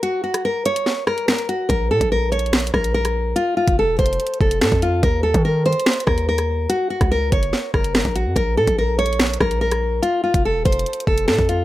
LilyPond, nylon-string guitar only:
\new Staff \with { instrumentName = "Nylon-string guitar" } { \time 4/4 \key bes \minor \tempo 4 = 144 ges'8 ges'8 bes'8 des''4 bes'8 bes'8 ges'8 | bes'8 a'8 bes'8 des''4 bes'8 bes'4 | f'8 f'8 a'8 c''4 a'8 a'8 f'8 | bes'8 a'8 bes'8 c''4 bes'8 bes'4 |
ges'8 ges'8 bes'8 des''4 bes'8 bes'8 ges'8 | bes'8 a'8 bes'8 des''4 bes'8 bes'4 | f'8 f'8 a'8 c''4 a'8 a'8 f'8 | }